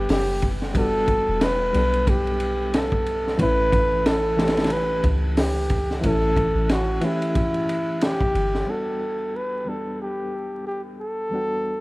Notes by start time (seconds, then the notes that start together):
Already playing: G3 B3 D4 F#4 G4 A4
0.09 F#1 G4, snare, open hi-hat
0.42 kick, ride
0.62 snare
0.74 G3 B3 D4 A4, kick, ride
0.79 F#4
1.08 kick, ride
1.29 E1
1.41 B4, snare, ride
1.73 B1 G3 B3 D4, ride
1.78 A4
1.94 ride
2.07 G4, kick, ride
2.27 ride
2.40 ride
2.74 A4, snare, ride
2.92 kick
3.06 ride
3.27 snare
3.38 A1 E3 A3 C#4 B4, kick, ride
3.43 E4
3.72 kick, ride
4.06 A4, snare, ride
4.37 E3 A3 C#4, snare, ride
4.42 G4
4.48 snare, ride
4.57 snare, ride
4.64 snare, ride
4.70 B4, ride
5.04 C#2, kick, ride
5.37 G4, snare, open hi-hat
5.70 kick, ride
5.91 snare
6.01 A1 E3 A3 C#4, kick, ride
6.05 E4 A4
6.36 kick, ride
6.55 A1
6.69 F#4, snare, ride
7.01 E3 A3 C#4 E4, ride
7.06 G4
7.22 ride
7.35 kick, ride
7.54 ride
7.69 ride
8.01 G4, snare, ride
8.21 kick
8.35 G1, ride
8.55 snare
8.65 E2 G3 B3 D4
8.70 F#4 A4
9.36 B4
9.65 E2 G3 B3 D4
9.69 A4
10.02 G4
10.67 G4
11.00 A4
11.30 E2 G3 B3 D4
11.35 F#4